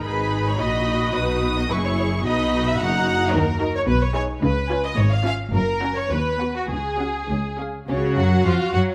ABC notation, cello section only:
X:1
M:2/4
L:1/8
Q:1/4=108
K:B
V:1 name="Cello section" clef=bass
G,,2 A,,2 | B,,2 F,,2 | B,,2 F,,2 | [K:F#] D,2 B,,2 |
C,2 G,,2 | F,,2 D,,2 | C,,2 C,,2 | C, F, E, F, |]